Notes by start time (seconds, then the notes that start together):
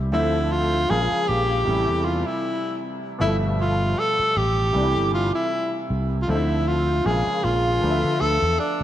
Already playing: C2 E3 G3 A3 C4 G4
0.12 D2 D3 F3 A3 C4 E4 E5
0.52 F4
0.89 A#1 C#3 F3 G#3 A#3 F4 G#4
1.12 muted fretless electric bass stroke
1.28 A#1 G4
1.65 A1 C3 E3 G3 A3 E4
1.89 E2
2.05 F4
2.26 E4
3.19 G1 B2 F3 G3 A3 E4 E5
3.60 F4
3.99 A4
4.19 muted fretless electric bass stroke
4.36 A1 G4
4.73 C2 C3 E3 G3 A3 D4
4.83 E4
4.96 G1
5.14 F4
5.35 E4
5.90 C2
6.22 F4
6.27 D2 D3 F3 A3 C4 D#4 E4
6.36 E5
6.68 F4
7.04 A#1 C3 F3 G#3 A#3 F4 G#4
7.11 C#3
7.44 A#1 F4
7.80 D2 D3 F3 A3 B3 D4
7.90 E5
8.04 D3
8.21 D2 A4
8.42 E2
8.59 D4